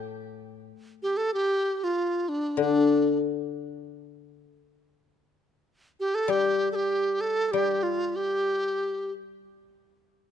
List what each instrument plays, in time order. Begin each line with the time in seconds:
Already playing: guzheng A2
1.02 dizi G4
1.17 dizi A4
1.34 dizi G4
1.84 dizi F4
2.29 dizi D4
2.57 guzheng D3, dizi D4
6.00 dizi G4
6.15 dizi A4
6.28 guzheng G3, dizi G4
6.72 dizi G4 A4
7.21 dizi A4
7.48 dizi G4 A4
7.53 guzheng G3
7.83 dizi F4
8.16 dizi G4